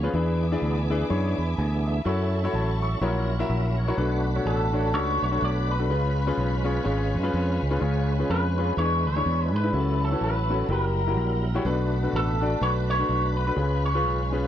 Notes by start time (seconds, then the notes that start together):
Already playing: F3 B3 C#4 G#4 F5 G#5 C#6
0.03 C#4 F4 G#4 B4
0.14 E2 E3 B3 D4 E4 G#4 B4 E5 G#5 B5 D6
0.52 D4 E4 G#4 D5
0.62 D2
0.90 D4 E4 G#4 B4
1.09 F#2 D4 E4 G#4 C#5
1.38 E2 B5
1.58 D2 G#5
1.87 E5
2.04 F#2 F#3 C#4 E4 F#4 A4 C#5 F#5 A5 C#6
2.44 E4 F#4 A4 C#5
2.53 A1 A5
2.82 C#6
3.01 A#1 A#2 F#3 C#4 E4 F#4 G#4 A#4 C#5 A#5
3.07 A#4
3.39 E4 F#4 A#4 E5
3.49 A#1 E5
3.77 C#5
3.88 E4 F#4 A#4 C#5
3.97 B1 B2 A3 D4 F#4 A4 B4 A5 B5
4.35 D4 F#4 A4 C#5
4.45 A1 A4
4.73 D4 F#4 A4 C#5
4.93 C#2 D4 F#4 A4 C#5
5.22 B1 C#5
5.31 D4 F#4 A4 C#5
5.42 B1 D5
5.71 B4
5.79 D4 F#4 A4 B4
5.89 C#2 C#3 G#3 C#4 F4 G#4 B4 C#5 F5 G#5
6.27 C#4 F4 G#4 B4
6.37 B1
6.64 C#4 F4 G#4 C#5
6.84 G#1 C#4 F4 G#4 C#5
7.14 F#2
7.23 C#4 F4 G#4 B4
7.34 F2
7.62 C#2
7.71 C#4 F4 G#4 B4
7.80 C#2 C#3 C#4 F4 G#4 C#5
8.19 C#4 F4 G#4 B4
8.30 F2 B4
8.58 C#4 F4 G#4 B4
8.76 E2 E3 G#3 D4 E4 G#4 B4 C#5 E5 B5
9.06 D2 C#5
9.15 D4 E4 G#4 C#5
9.26 E2
9.54 G#2 B4
9.64 D4 E4 G#4 B4
9.73 C#2 C#3 F#3 C#4 E4 F#4 G#4 A4 C#5 F#5 A5
9.80 A4
10.04 A4
10.11 C#4 E4 F#4 B4
10.21 A1 B4
10.50 C#4 E4 F#4 A4
10.69 F#1 F#3 G3 E4 F#4 G4 A4 A#4 G5 A#5
10.75 A#4
11.07 E4 F#4 G4 A#4
11.17 A#1
11.55 E4 F#4 G4 C#5
11.65 B1 B2 A3 D4 F#4 A4 B4 A5 B5
12.03 D4 F#4 A4 B4
12.13 A1 A4
12.41 D4 F#4 A4 D5
12.61 B1 D4 F#4 A4 B4 C#5
12.90 C#5
12.99 D4 F#4 A4 B4
13.09 B1
13.37 B4
13.47 D4 F#4 A4 B4
13.56 C#2 C#3 G#3 C#4 F4 G#4 B4 C#5 F5 G#5
13.85 C#5
13.94 C#4 F4 G#4 B4
14.04 B1
14.32 C#4 F4 G#4 B4